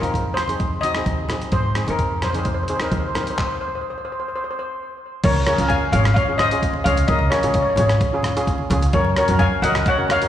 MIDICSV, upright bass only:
0, 0, Header, 1, 2, 480
1, 0, Start_track
1, 0, Key_signature, -5, "major"
1, 0, Tempo, 463320
1, 1581, Time_signature, 4, 2, 24, 8
1, 10651, End_track
2, 0, Start_track
2, 0, Title_t, "Upright bass"
2, 0, Program_c, 0, 32
2, 21, Note_on_c, 0, 41, 71
2, 798, Note_off_c, 0, 41, 0
2, 1100, Note_on_c, 0, 39, 85
2, 1488, Note_off_c, 0, 39, 0
2, 1576, Note_on_c, 0, 44, 82
2, 1871, Note_off_c, 0, 44, 0
2, 1954, Note_on_c, 0, 41, 72
2, 2726, Note_off_c, 0, 41, 0
2, 3022, Note_on_c, 0, 39, 84
2, 3410, Note_off_c, 0, 39, 0
2, 5431, Note_on_c, 0, 37, 98
2, 5621, Note_off_c, 0, 37, 0
2, 5783, Note_on_c, 0, 37, 84
2, 5978, Note_off_c, 0, 37, 0
2, 6148, Note_on_c, 0, 32, 87
2, 6339, Note_off_c, 0, 32, 0
2, 7102, Note_on_c, 0, 37, 97
2, 7295, Note_off_c, 0, 37, 0
2, 7340, Note_on_c, 0, 37, 93
2, 7534, Note_off_c, 0, 37, 0
2, 7705, Note_on_c, 0, 37, 86
2, 7898, Note_off_c, 0, 37, 0
2, 8059, Note_on_c, 0, 32, 86
2, 8252, Note_off_c, 0, 32, 0
2, 9018, Note_on_c, 0, 37, 103
2, 9211, Note_off_c, 0, 37, 0
2, 9258, Note_on_c, 0, 42, 92
2, 9451, Note_off_c, 0, 42, 0
2, 9622, Note_on_c, 0, 42, 88
2, 9815, Note_off_c, 0, 42, 0
2, 9968, Note_on_c, 0, 37, 85
2, 10165, Note_off_c, 0, 37, 0
2, 10651, End_track
0, 0, End_of_file